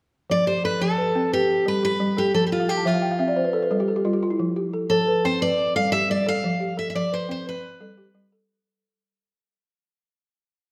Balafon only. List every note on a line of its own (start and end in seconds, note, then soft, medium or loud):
0.30 0.64 F3 medium
0.47 0.98 G4 medium
0.64 1.15 A4 medium
0.81 1.15 F3 medium
0.98 1.31 B4 medium
1.15 1.32 C4 medium
1.32 1.83 B4 medium
1.66 1.99 G3 medium
1.66 2.16 A4 medium
1.83 2.34 G4 medium
2.00 2.34 G3 medium
2.17 2.51 A4 medium
2.34 2.68 F3 medium
2.60 2.76 F5 medium
2.68 2.84 G5 medium
2.77 2.93 A5 medium
2.85 3.19 F3 medium
2.85 3.01 E5 medium
2.94 3.10 F5 medium
3.02 3.18 G5 medium
3.11 3.27 F5 medium
3.19 3.36 C4 medium
3.19 3.35 E5 medium
3.28 3.44 D5 medium
3.36 3.52 C5 medium
3.44 3.60 B4 medium
3.53 3.69 A4 medium
3.62 3.78 B4 medium
3.71 4.04 G3 medium
3.71 3.86 A4 medium
3.80 3.95 G4 medium
3.88 4.04 A4 medium
3.96 4.12 G4 medium
4.05 4.39 G3 medium
4.05 4.20 F4 medium
4.13 4.29 G4 medium
4.23 4.38 F4 medium
4.30 4.46 E4 medium
4.39 4.73 F3 medium
4.56 5.07 G4 medium
4.73 5.24 A4 medium
4.91 5.24 F3 medium
5.07 5.40 B4 medium
5.24 5.41 C4 medium
5.41 5.92 B4 medium
5.75 6.09 G3 medium
5.75 6.25 A4 medium
5.93 6.44 G4 medium
6.10 6.44 G3 medium
6.26 6.60 A4 medium
6.44 6.78 F3 medium
6.60 7.11 G4 medium
6.77 7.29 A4 medium
6.95 7.29 F3 medium
7.12 7.45 B4 medium
7.29 7.46 C4 medium
7.46 7.97 B4 medium
7.80 8.13 G3 medium
7.80 8.31 A4 medium
7.98 8.49 G4 medium
8.15 8.49 G3 medium
8.32 8.66 A4 medium